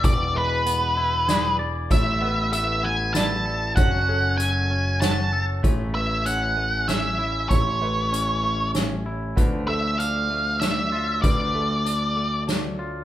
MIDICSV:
0, 0, Header, 1, 7, 480
1, 0, Start_track
1, 0, Key_signature, 3, "major"
1, 0, Tempo, 621762
1, 36, Time_signature, 3, 2, 24, 8
1, 10067, End_track
2, 0, Start_track
2, 0, Title_t, "Lead electric guitar"
2, 0, Program_c, 0, 29
2, 39, Note_on_c, 0, 74, 76
2, 280, Note_on_c, 0, 71, 55
2, 284, Note_off_c, 0, 74, 0
2, 1206, Note_off_c, 0, 71, 0
2, 1480, Note_on_c, 0, 76, 65
2, 1926, Note_off_c, 0, 76, 0
2, 1952, Note_on_c, 0, 76, 80
2, 2195, Note_on_c, 0, 80, 81
2, 2200, Note_off_c, 0, 76, 0
2, 2419, Note_off_c, 0, 80, 0
2, 2422, Note_on_c, 0, 81, 83
2, 2877, Note_off_c, 0, 81, 0
2, 2901, Note_on_c, 0, 78, 81
2, 3356, Note_off_c, 0, 78, 0
2, 3379, Note_on_c, 0, 80, 86
2, 3862, Note_off_c, 0, 80, 0
2, 3866, Note_on_c, 0, 81, 75
2, 4204, Note_off_c, 0, 81, 0
2, 4592, Note_on_c, 0, 76, 60
2, 4833, Note_on_c, 0, 78, 80
2, 4840, Note_off_c, 0, 76, 0
2, 5311, Note_on_c, 0, 76, 70
2, 5327, Note_off_c, 0, 78, 0
2, 5781, Note_off_c, 0, 76, 0
2, 5784, Note_on_c, 0, 73, 58
2, 6718, Note_off_c, 0, 73, 0
2, 7473, Note_on_c, 0, 76, 70
2, 7708, Note_on_c, 0, 77, 78
2, 7721, Note_off_c, 0, 76, 0
2, 8181, Note_on_c, 0, 76, 70
2, 8206, Note_off_c, 0, 77, 0
2, 8660, Note_off_c, 0, 76, 0
2, 8663, Note_on_c, 0, 74, 66
2, 9600, Note_off_c, 0, 74, 0
2, 10067, End_track
3, 0, Start_track
3, 0, Title_t, "Felt piano"
3, 0, Program_c, 1, 0
3, 32, Note_on_c, 1, 85, 75
3, 271, Note_on_c, 1, 71, 61
3, 274, Note_off_c, 1, 85, 0
3, 753, Note_off_c, 1, 71, 0
3, 989, Note_on_c, 1, 74, 64
3, 1472, Note_off_c, 1, 74, 0
3, 1472, Note_on_c, 1, 73, 73
3, 1713, Note_off_c, 1, 73, 0
3, 1714, Note_on_c, 1, 71, 69
3, 2194, Note_off_c, 1, 71, 0
3, 2433, Note_on_c, 1, 74, 70
3, 2913, Note_off_c, 1, 74, 0
3, 2916, Note_on_c, 1, 73, 73
3, 3154, Note_on_c, 1, 69, 59
3, 3155, Note_off_c, 1, 73, 0
3, 3634, Note_off_c, 1, 69, 0
3, 3873, Note_on_c, 1, 73, 71
3, 4340, Note_off_c, 1, 73, 0
3, 4352, Note_on_c, 1, 73, 60
3, 4591, Note_on_c, 1, 71, 54
3, 4592, Note_off_c, 1, 73, 0
3, 5072, Note_off_c, 1, 71, 0
3, 5319, Note_on_c, 1, 73, 55
3, 5782, Note_off_c, 1, 73, 0
3, 5793, Note_on_c, 1, 73, 69
3, 6034, Note_off_c, 1, 73, 0
3, 6034, Note_on_c, 1, 71, 60
3, 6514, Note_off_c, 1, 71, 0
3, 6754, Note_on_c, 1, 73, 61
3, 7229, Note_on_c, 1, 71, 66
3, 7234, Note_off_c, 1, 73, 0
3, 7472, Note_off_c, 1, 71, 0
3, 7474, Note_on_c, 1, 69, 57
3, 7955, Note_off_c, 1, 69, 0
3, 8193, Note_on_c, 1, 73, 59
3, 8673, Note_on_c, 1, 71, 60
3, 8675, Note_off_c, 1, 73, 0
3, 8914, Note_off_c, 1, 71, 0
3, 8915, Note_on_c, 1, 69, 57
3, 9396, Note_off_c, 1, 69, 0
3, 9637, Note_on_c, 1, 73, 55
3, 10067, Note_off_c, 1, 73, 0
3, 10067, End_track
4, 0, Start_track
4, 0, Title_t, "Clean electric guitar"
4, 0, Program_c, 2, 27
4, 0, Note_on_c, 2, 59, 56
4, 0, Note_on_c, 2, 64, 56
4, 0, Note_on_c, 2, 68, 56
4, 0, Note_on_c, 2, 74, 63
4, 28, Note_on_c, 2, 52, 62
4, 270, Note_on_c, 2, 56, 54
4, 508, Note_off_c, 2, 59, 0
4, 511, Note_on_c, 2, 59, 61
4, 746, Note_off_c, 2, 64, 0
4, 749, Note_on_c, 2, 64, 60
4, 753, Note_off_c, 2, 68, 0
4, 990, Note_on_c, 2, 68, 56
4, 991, Note_off_c, 2, 74, 0
4, 1228, Note_on_c, 2, 74, 72
4, 1231, Note_off_c, 2, 52, 0
4, 1466, Note_off_c, 2, 56, 0
4, 1469, Note_on_c, 2, 57, 67
4, 1471, Note_off_c, 2, 74, 0
4, 1472, Note_off_c, 2, 59, 0
4, 1472, Note_off_c, 2, 64, 0
4, 1472, Note_off_c, 2, 68, 0
4, 1707, Note_on_c, 2, 59, 53
4, 1942, Note_off_c, 2, 57, 0
4, 1945, Note_on_c, 2, 57, 56
4, 2178, Note_off_c, 2, 59, 0
4, 2187, Note_on_c, 2, 59, 55
4, 2431, Note_on_c, 2, 64, 64
4, 2668, Note_on_c, 2, 69, 62
4, 2907, Note_off_c, 2, 57, 0
4, 2910, Note_off_c, 2, 59, 0
4, 2910, Note_on_c, 2, 54, 74
4, 2912, Note_off_c, 2, 64, 0
4, 3154, Note_on_c, 2, 61, 58
4, 3385, Note_off_c, 2, 54, 0
4, 3394, Note_on_c, 2, 54, 58
4, 3624, Note_off_c, 2, 61, 0
4, 3633, Note_on_c, 2, 61, 61
4, 3872, Note_on_c, 2, 66, 60
4, 4110, Note_off_c, 2, 69, 0
4, 4113, Note_on_c, 2, 69, 65
4, 4350, Note_off_c, 2, 54, 0
4, 4353, Note_off_c, 2, 61, 0
4, 4353, Note_off_c, 2, 66, 0
4, 4353, Note_off_c, 2, 69, 0
4, 4353, Note_on_c, 2, 57, 60
4, 4592, Note_off_c, 2, 57, 0
4, 4595, Note_on_c, 2, 57, 48
4, 4831, Note_on_c, 2, 61, 50
4, 5068, Note_off_c, 2, 57, 0
4, 5071, Note_on_c, 2, 57, 57
4, 5303, Note_off_c, 2, 61, 0
4, 5312, Note_on_c, 2, 61, 56
4, 5551, Note_on_c, 2, 64, 57
4, 5788, Note_off_c, 2, 57, 0
4, 5791, Note_on_c, 2, 57, 64
4, 6029, Note_off_c, 2, 57, 0
4, 6032, Note_on_c, 2, 57, 53
4, 6261, Note_off_c, 2, 61, 0
4, 6270, Note_on_c, 2, 61, 51
4, 6507, Note_off_c, 2, 57, 0
4, 6511, Note_on_c, 2, 57, 53
4, 6745, Note_off_c, 2, 61, 0
4, 6753, Note_off_c, 2, 64, 0
4, 6754, Note_on_c, 2, 61, 52
4, 6994, Note_on_c, 2, 64, 61
4, 7230, Note_on_c, 2, 50, 70
4, 7234, Note_off_c, 2, 64, 0
4, 7235, Note_off_c, 2, 61, 0
4, 7474, Note_off_c, 2, 57, 0
4, 7477, Note_on_c, 2, 57, 52
4, 7711, Note_on_c, 2, 62, 50
4, 7952, Note_off_c, 2, 57, 0
4, 7955, Note_on_c, 2, 57, 56
4, 8183, Note_off_c, 2, 62, 0
4, 8193, Note_on_c, 2, 62, 60
4, 8432, Note_on_c, 2, 65, 60
4, 8433, Note_off_c, 2, 50, 0
4, 8674, Note_on_c, 2, 50, 66
4, 8908, Note_off_c, 2, 57, 0
4, 8911, Note_on_c, 2, 57, 50
4, 9144, Note_off_c, 2, 62, 0
4, 9153, Note_on_c, 2, 62, 49
4, 9391, Note_off_c, 2, 57, 0
4, 9394, Note_on_c, 2, 57, 54
4, 9623, Note_off_c, 2, 62, 0
4, 9633, Note_on_c, 2, 62, 50
4, 9635, Note_off_c, 2, 65, 0
4, 9874, Note_on_c, 2, 65, 55
4, 9876, Note_off_c, 2, 50, 0
4, 10067, Note_off_c, 2, 57, 0
4, 10067, Note_off_c, 2, 62, 0
4, 10067, Note_off_c, 2, 65, 0
4, 10067, End_track
5, 0, Start_track
5, 0, Title_t, "Pedal steel guitar"
5, 0, Program_c, 3, 26
5, 0, Note_on_c, 3, 52, 54
5, 0, Note_on_c, 3, 59, 50
5, 0, Note_on_c, 3, 62, 44
5, 0, Note_on_c, 3, 66, 55
5, 0, Note_on_c, 3, 68, 53
5, 1443, Note_off_c, 3, 66, 0
5, 1444, Note_off_c, 3, 52, 0
5, 1445, Note_off_c, 3, 62, 0
5, 1445, Note_off_c, 3, 68, 0
5, 1472, Note_on_c, 3, 57, 60
5, 1475, Note_on_c, 3, 64, 65
5, 2879, Note_off_c, 3, 59, 0
5, 2899, Note_off_c, 3, 64, 0
5, 2912, Note_on_c, 3, 61, 53
5, 2917, Note_on_c, 3, 66, 62
5, 4323, Note_off_c, 3, 57, 0
5, 4338, Note_off_c, 3, 61, 0
5, 4339, Note_off_c, 3, 66, 0
5, 4346, Note_on_c, 3, 57, 41
5, 4348, Note_on_c, 3, 61, 52
5, 7203, Note_off_c, 3, 61, 0
5, 7234, Note_on_c, 3, 53, 52
5, 7238, Note_on_c, 3, 62, 58
5, 10067, Note_off_c, 3, 53, 0
5, 10067, Note_off_c, 3, 57, 0
5, 10067, Note_off_c, 3, 62, 0
5, 10067, End_track
6, 0, Start_track
6, 0, Title_t, "Picked electric bass"
6, 0, Program_c, 4, 34
6, 32, Note_on_c, 4, 28, 62
6, 1444, Note_off_c, 4, 28, 0
6, 1474, Note_on_c, 4, 33, 63
6, 2885, Note_off_c, 4, 33, 0
6, 2910, Note_on_c, 4, 30, 67
6, 4322, Note_off_c, 4, 30, 0
6, 4355, Note_on_c, 4, 33, 57
6, 5765, Note_off_c, 4, 33, 0
6, 5797, Note_on_c, 4, 33, 53
6, 7208, Note_off_c, 4, 33, 0
6, 7237, Note_on_c, 4, 38, 63
6, 8648, Note_off_c, 4, 38, 0
6, 8674, Note_on_c, 4, 38, 63
6, 10067, Note_off_c, 4, 38, 0
6, 10067, End_track
7, 0, Start_track
7, 0, Title_t, "Drums"
7, 30, Note_on_c, 9, 42, 54
7, 32, Note_on_c, 9, 36, 93
7, 108, Note_off_c, 9, 42, 0
7, 109, Note_off_c, 9, 36, 0
7, 512, Note_on_c, 9, 42, 49
7, 590, Note_off_c, 9, 42, 0
7, 993, Note_on_c, 9, 38, 68
7, 993, Note_on_c, 9, 42, 47
7, 1070, Note_off_c, 9, 38, 0
7, 1070, Note_off_c, 9, 42, 0
7, 1471, Note_on_c, 9, 42, 47
7, 1473, Note_on_c, 9, 36, 90
7, 1549, Note_off_c, 9, 42, 0
7, 1550, Note_off_c, 9, 36, 0
7, 1951, Note_on_c, 9, 42, 54
7, 2028, Note_off_c, 9, 42, 0
7, 2431, Note_on_c, 9, 38, 68
7, 2431, Note_on_c, 9, 42, 54
7, 2508, Note_off_c, 9, 38, 0
7, 2508, Note_off_c, 9, 42, 0
7, 2910, Note_on_c, 9, 42, 56
7, 2912, Note_on_c, 9, 36, 96
7, 2987, Note_off_c, 9, 42, 0
7, 2989, Note_off_c, 9, 36, 0
7, 3394, Note_on_c, 9, 42, 50
7, 3471, Note_off_c, 9, 42, 0
7, 3874, Note_on_c, 9, 38, 72
7, 3874, Note_on_c, 9, 42, 54
7, 3951, Note_off_c, 9, 38, 0
7, 3951, Note_off_c, 9, 42, 0
7, 4354, Note_on_c, 9, 36, 92
7, 4355, Note_on_c, 9, 42, 46
7, 4431, Note_off_c, 9, 36, 0
7, 4432, Note_off_c, 9, 42, 0
7, 4833, Note_on_c, 9, 42, 46
7, 4910, Note_off_c, 9, 42, 0
7, 5315, Note_on_c, 9, 38, 60
7, 5315, Note_on_c, 9, 42, 43
7, 5392, Note_off_c, 9, 38, 0
7, 5392, Note_off_c, 9, 42, 0
7, 5794, Note_on_c, 9, 42, 48
7, 5795, Note_on_c, 9, 36, 85
7, 5871, Note_off_c, 9, 42, 0
7, 5872, Note_off_c, 9, 36, 0
7, 6281, Note_on_c, 9, 42, 52
7, 6358, Note_off_c, 9, 42, 0
7, 6752, Note_on_c, 9, 38, 65
7, 6752, Note_on_c, 9, 42, 48
7, 6829, Note_off_c, 9, 38, 0
7, 6829, Note_off_c, 9, 42, 0
7, 7236, Note_on_c, 9, 36, 83
7, 7238, Note_on_c, 9, 42, 53
7, 7314, Note_off_c, 9, 36, 0
7, 7316, Note_off_c, 9, 42, 0
7, 7718, Note_on_c, 9, 42, 44
7, 7795, Note_off_c, 9, 42, 0
7, 8196, Note_on_c, 9, 38, 61
7, 8196, Note_on_c, 9, 42, 50
7, 8273, Note_off_c, 9, 38, 0
7, 8273, Note_off_c, 9, 42, 0
7, 8674, Note_on_c, 9, 42, 52
7, 8676, Note_on_c, 9, 36, 89
7, 8752, Note_off_c, 9, 42, 0
7, 8753, Note_off_c, 9, 36, 0
7, 9158, Note_on_c, 9, 42, 46
7, 9235, Note_off_c, 9, 42, 0
7, 9639, Note_on_c, 9, 38, 67
7, 9639, Note_on_c, 9, 42, 45
7, 9716, Note_off_c, 9, 38, 0
7, 9716, Note_off_c, 9, 42, 0
7, 10067, End_track
0, 0, End_of_file